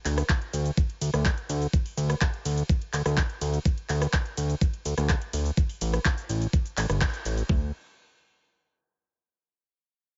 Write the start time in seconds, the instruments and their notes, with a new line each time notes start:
0.05 analog synth bass D2, clap, open hi-hat, ride, cabasa
0.18 cross-stick, closed hi-hat, cabasa
0.29 kick, clap, closed hi-hat, ride, cabasa
0.42 closed hi-hat
0.53 analog synth bass D2, open hi-hat, ride, cabasa
0.66 closed hi-hat, cabasa
0.77 kick, closed hi-hat, ride, cabasa
0.90 closed hi-hat
1.01 analog synth bass D2, open hi-hat, ride, cabasa
1.14 analog synth bass D2, cross-stick, closed hi-hat, cabasa
1.25 kick, clap, closed hi-hat, ride, cabasa
1.38 closed hi-hat
1.49 analog synth bass D2, open hi-hat, ride, cabasa
1.62 closed hi-hat, cabasa
1.73 kick, closed hi-hat, ride, cabasa
1.86 open hi-hat
1.97 analog synth bass D2, open hi-hat, ride, cabasa
2.10 cross-stick, closed hi-hat, cabasa
2.21 kick, clap, closed hi-hat, ride, cabasa
2.34 closed hi-hat
2.45 analog synth bass D2, open hi-hat, ride, cabasa
2.58 closed hi-hat, cabasa
2.69 kick, closed hi-hat, ride, cabasa
2.82 closed hi-hat
2.93 analog synth bass D2, clap, open hi-hat, ride, cabasa
3.06 analog synth bass D2, cross-stick, closed hi-hat, cabasa
3.17 kick, clap, closed hi-hat, ride, cabasa
3.30 closed hi-hat
3.41 analog synth bass D2, open hi-hat, ride, cabasa
3.54 closed hi-hat, cabasa
3.65 kick, closed hi-hat, ride, cabasa
3.78 closed hi-hat
3.89 analog synth bass D2, clap, open hi-hat, ride, cabasa
4.02 cross-stick, closed hi-hat, cabasa
4.13 kick, clap, closed hi-hat, ride, cabasa
4.26 closed hi-hat
4.37 analog synth bass D2, open hi-hat, ride, cabasa
4.50 closed hi-hat, cabasa
4.61 kick, closed hi-hat, ride, cabasa
4.74 closed hi-hat
4.85 analog synth bass D2, open hi-hat, ride, cabasa
4.98 analog synth bass D2, cross-stick, closed hi-hat, cabasa
5.09 kick, clap, closed hi-hat, ride, cabasa
5.22 closed hi-hat
5.33 analog synth bass D2, open hi-hat, ride, cabasa
5.46 closed hi-hat, cabasa
5.57 kick, closed hi-hat, ride, cabasa
5.69 open hi-hat
5.81 analog synth bass A1, open hi-hat, ride, cabasa
5.94 cross-stick, closed hi-hat, cabasa
6.05 kick, clap, closed hi-hat, ride, cabasa
6.18 closed hi-hat, cabasa
6.29 analog synth bass A1, open hi-hat, ride, cabasa
6.42 closed hi-hat, cabasa
6.53 kick, closed hi-hat, ride, cabasa
6.66 closed hi-hat, cabasa
6.77 analog synth bass A1, clap, open hi-hat, ride, cabasa
6.90 analog synth bass G1, cross-stick, closed hi-hat, cabasa
7.01 kick, clap, closed hi-hat, cabasa
7.14 closed hi-hat, cabasa
7.25 analog synth bass A1, open hi-hat, ride, cabasa
7.38 closed hi-hat, cabasa
7.49 analog synth bass D2, kick